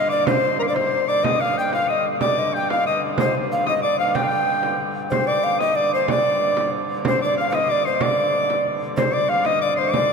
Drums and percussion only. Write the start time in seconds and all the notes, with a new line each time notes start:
0.27 frame drum
0.44 frame drum
0.60 frame drum
0.76 frame drum
1.08 frame drum
1.24 frame drum
1.73 frame drum
1.90 frame drum
2.21 frame drum
2.70 frame drum
2.86 frame drum
3.18 frame drum
3.67 frame drum
3.84 frame drum
4.15 frame drum
4.32 frame drum
4.63 frame drum
4.80 frame drum
4.96 frame drum
5.12 frame drum
5.60 frame drum
5.77 frame drum
6.08 frame drum
6.57 frame drum
6.73 frame drum
7.05 frame drum
7.53 frame drum
7.69 frame drum
8.01 frame drum
8.17 frame drum
8.33 frame drum
8.50 frame drum
8.82 frame drum
8.97 frame drum
9.45 frame drum
9.61 frame drum
9.94 frame drum